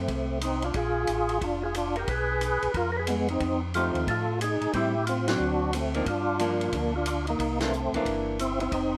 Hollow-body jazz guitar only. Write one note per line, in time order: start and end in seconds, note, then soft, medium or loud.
3.75 4.25 F3 medium
3.75 4.25 A3 medium
3.75 4.25 D#4 medium
3.75 4.25 G4 medium
4.75 4.93 G3 medium
4.75 4.93 C4 medium
4.75 4.94 E4 medium
5.29 5.71 F#3 medium
5.29 5.72 C4 medium
5.95 6.05 F3 medium
5.95 6.06 A#3 medium
5.95 6.06 D4 medium
6.40 6.90 F3 medium
6.40 6.90 A#3 medium
6.40 6.91 D4 medium
7.61 7.72 E3 medium
7.61 7.72 A#3 medium
7.61 7.72 D4 medium
7.95 8.37 E3 medium
7.95 8.37 A#3 medium
7.95 8.38 D4 medium